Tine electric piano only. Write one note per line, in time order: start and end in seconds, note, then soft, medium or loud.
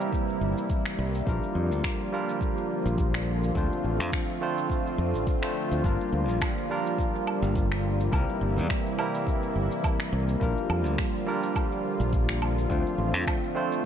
0.00 1.25 G3 medium
0.00 1.26 A#3 medium
0.00 1.29 C4 medium
0.00 1.29 E4 medium
0.00 1.29 A#4 medium
1.25 2.09 G3 medium
1.25 2.09 A#3 medium
1.25 2.10 D4 medium
1.25 2.10 F4 medium
1.25 2.11 A#4 medium
2.12 2.26 G3 medium
2.12 2.26 A#3 medium
2.12 2.27 D4 medium
2.12 2.27 F4 medium
2.12 2.27 A#4 medium
3.54 4.38 A3 medium
3.54 4.38 C4 medium
3.54 4.39 D4 medium
3.54 4.39 F4 medium
3.54 4.39 C5 medium
4.41 4.55 A3 medium
4.41 4.55 C4 medium
4.41 4.55 D4 medium
4.41 4.56 F4 medium
4.41 4.56 C5 loud
5.42 5.81 A3 medium
5.42 5.81 C4 medium
5.42 5.81 D4 medium
5.42 5.82 F4 medium
5.42 5.82 C5 medium
5.82 6.66 G3 medium
5.82 6.66 A#3 medium
5.82 6.67 D4 medium
5.82 6.67 F4 medium
5.82 6.68 A#4 medium
6.70 6.84 G3 medium
6.70 6.84 A#3 medium
6.70 6.84 D4 medium
6.70 6.84 F4 medium
6.70 6.85 A#4 medium
8.12 8.95 G3 medium
8.12 8.95 A#3 medium
8.12 8.96 C4 medium
8.12 8.96 E4 medium
8.12 8.96 A#4 medium
8.98 9.12 G3 medium
8.98 9.12 A#3 medium
8.98 9.12 C4 medium
8.98 9.13 E4 medium
8.98 9.13 A#4 medium
10.40 11.23 G3 medium
10.40 11.23 A#3 medium
10.40 11.24 D4 medium
10.40 11.24 F4 medium
10.40 11.25 A#4 medium
11.26 11.40 G3 medium
11.26 11.41 A#3 medium
11.26 11.41 D4 medium
11.26 11.41 F4 medium
11.26 11.42 A#4 medium
12.69 13.52 A3 medium
12.69 13.52 C4 medium
12.69 13.53 D4 medium
12.69 13.53 F4 medium
12.69 13.54 C5 medium
13.55 13.69 A3 medium
13.55 13.69 C4 medium
13.55 13.69 D4 medium
13.55 13.70 F4 medium
13.55 13.70 C5 medium